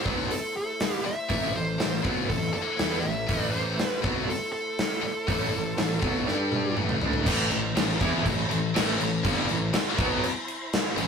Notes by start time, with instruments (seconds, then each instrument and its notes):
Already playing: tonewheel organ A3 E4 C5
0.04 picked electric bass B1, distorted electric guitar B2 F#3 B3, kick
0.31 lead electric guitar A4, open hi-hat
0.57 lead electric guitar A4
0.80 snare, open hi-hat
1.05 lead electric guitar E5, muted distorted electric guitar stroke, muted overdriven electric guitar stroke, muted picked electric bass stroke
1.29 picked electric bass A1, distorted electric guitar A2 E3 A3, kick, open hi-hat
1.53 picked electric bass A1, distorted electric guitar A2 E3, lead electric guitar C5
1.78 picked electric bass A1, distorted electric guitar A2 E3, snare, open hi-hat
2.02 picked electric bass B1, distorted electric guitar B2 F#3 B3, kick
2.27 picked electric bass A1, distorted electric guitar A2 E3, lead electric guitar A4, kick, open hi-hat
2.53 lead electric guitar A4, muted distorted electric guitar stroke, muted overdriven electric guitar stroke, muted picked electric bass stroke
2.77 picked electric bass E2, distorted electric guitar E3 B3 E4, snare, open hi-hat
3.00 distorted electric guitar A2 E3, lead electric guitar E5
3.05 picked electric bass A1
3.27 picked electric bass A1, distorted electric guitar A2 E3 A3, kick, open hi-hat
3.43 lead electric guitar D5
3.51 lead electric guitar C5
3.77 muted distorted electric guitar stroke, muted picked electric bass stroke, muted overdriven electric guitar stroke, snare, open hi-hat
3.86 lead electric guitar B4
4.02 picked electric bass B1, distorted electric guitar B2 F#3 B3, kick
4.29 lead electric guitar A4, open hi-hat
4.53 lead electric guitar A4
4.79 snare, open hi-hat
5.02 muted distorted electric guitar stroke, muted picked electric bass stroke, muted overdriven electric guitar stroke
5.27 picked electric bass A1, distorted electric guitar A2 E3 A3, kick, open hi-hat
5.52 picked electric bass A1, distorted electric guitar A2 E3
5.77 picked electric bass A1, distorted electric guitar A2 E3, snare, open hi-hat
6.02 picked electric bass B1, distorted electric guitar B2 F#3 B3, kick
6.26 picked electric bass G2, distorted electric guitar G3 D4 G4, tonewheel organ G3 D4 A4, snare
6.52 high tom
6.75 picked electric bass A1, distorted electric guitar A2 E3 A3, tonewheel organ A3 E4 B4, mid tom
6.89 mid tom
7.01 picked electric bass D2, distorted electric guitar D3 A3 D4, floor tom
7.13 floor tom
7.26 picked electric bass A1, distorted electric guitar A2 E3 A3, tonewheel organ E4 C5 A5, kick, crash
7.51 picked electric bass A1, distorted electric guitar A2 E3, crash
7.75 picked electric bass A1, distorted electric guitar A2 E3, snare, crash
8.00 picked electric bass E2, distorted electric guitar E3 B3 E4, kick, crash
8.24 picked electric bass A1, distorted electric guitar A2 E3, kick, crash
8.49 picked electric bass A1, distorted electric guitar A2 E3, crash
8.74 picked electric bass A1, distorted electric guitar A2 E3 A3, snare, crash
8.99 picked electric bass A1, distorted electric guitar A2 E3, crash
9.23 picked electric bass G1, distorted electric guitar G2 D3 G3, kick, crash
9.49 picked electric bass A1, distorted electric guitar A2 E3, crash
9.73 muted distorted electric guitar stroke, muted picked electric bass stroke, muted overdriven electric guitar stroke, snare, crash
9.97 picked electric bass B1, distorted electric guitar B2 F#3 B3, kick, crash
10.23 tonewheel organ B5, crash
10.48 crash
10.73 snare, crash
10.97 picked electric bass A1, distorted electric guitar A2 E3, crash